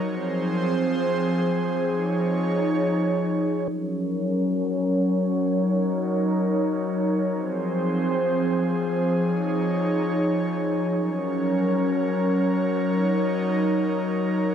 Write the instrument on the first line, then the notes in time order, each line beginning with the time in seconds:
analog synth pad
0.04 F3 C4 G#4 C5
1.86 F3 D#4 C#5
3.68 F#3 C#4 A#4 C#5
5.50 D#4 A#4
7.32 F3 C4 G#4 C5
9.13 D#4 C#5
10.95 F#3 C#4 A#4 C#5
12.77 D#4